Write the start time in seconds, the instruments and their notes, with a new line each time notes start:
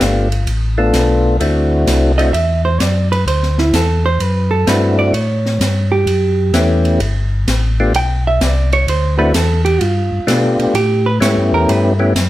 Already playing: hollow-body jazz guitar F4
0.00 tonewheel organ G1 A3 B3 D4 F4 G4, snare, hi-hat pedal, ride
0.32 ride
0.47 tonewheel organ A1, ride
0.78 tonewheel organ A3 B3 D4 F4 A4
0.93 tonewheel organ B1, snare, hi-hat pedal, ride
1.40 tonewheel organ D2 A3 C4 D4 E4 F#4, ride
1.86 tonewheel organ C2, snare, hi-hat pedal, ride
2.18 tonewheel organ A3 C4 D4 E4 F#4, hollow-body jazz guitar D#5, ride
2.33 tonewheel organ E2, hollow-body jazz guitar E5, ride
2.65 hollow-body jazz guitar C5
2.80 tonewheel organ F#2, hollow-body jazz guitar D5, snare, hi-hat pedal, ride
3.12 hollow-body jazz guitar B4, ride
3.26 tonewheel organ D2, hollow-body jazz guitar C5, ride
3.43 snare
3.58 hollow-body jazz guitar E4, snare
3.73 tonewheel organ E2, hollow-body jazz guitar A4, snare, hi-hat pedal, ride
4.06 hollow-body jazz guitar C5
4.20 tonewheel organ F#2, hollow-body jazz guitar B4, ride
4.51 hollow-body jazz guitar A4
4.67 tonewheel organ G2 A3 C4 D4 E4 F#4, hollow-body jazz guitar B4, snare, hi-hat pedal, ride
4.99 hollow-body jazz guitar D5
5.13 tonewheel organ A2, hollow-body jazz guitar C#5, ride
5.46 snare
5.60 tonewheel organ G2, snare, hi-hat pedal, ride
5.92 hollow-body jazz guitar G4
6.06 tonewheel organ F#2, ride
6.53 tonewheel organ E2 A3 B3 C#4 E4 G4, snare, hi-hat pedal, ride
6.85 ride
6.99 tonewheel organ G1, ride
7.46 tonewheel organ A1, snare, hi-hat pedal, ride
7.80 tonewheel organ A3 B3 D4 F4 G4
7.93 tonewheel organ B1, hollow-body jazz guitar G5, ride
8.27 hollow-body jazz guitar E5
8.40 tonewheel organ C2, hollow-body jazz guitar D5, snare, hi-hat pedal, ride
8.72 hollow-body jazz guitar C#5, ride
8.87 tonewheel organ D2, hollow-body jazz guitar C5, ride
9.19 tonewheel organ A3 C4 D4 E4 F#4, hollow-body jazz guitar B4
9.34 tonewheel organ E2, hollow-body jazz guitar A4, snare, hi-hat pedal, ride
9.65 hollow-body jazz guitar G4, ride
9.81 tonewheel organ G2, hollow-body jazz guitar F4, ride
10.12 tonewheel organ G2
10.27 tonewheel organ B2 A3 B3 D4 F4 G4, snare, hi-hat pedal, ride
10.59 tonewheel organ B2, ride
10.74 tonewheel organ A2, hollow-body jazz guitar G4, ride
11.06 hollow-body jazz guitar B4
11.20 tonewheel organ G#2 A3 B3 C#4 E4 G4, hollow-body jazz guitar C#5, snare, hi-hat pedal, ride
11.37 tonewheel organ G2
11.52 tonewheel organ E2, hollow-body jazz guitar A#4
11.68 tonewheel organ G2, hollow-body jazz guitar B4, ride
11.99 tonewheel organ A3 B3 C#4 E4 G4
12.15 tonewheel organ F#2, snare, hi-hat pedal, ride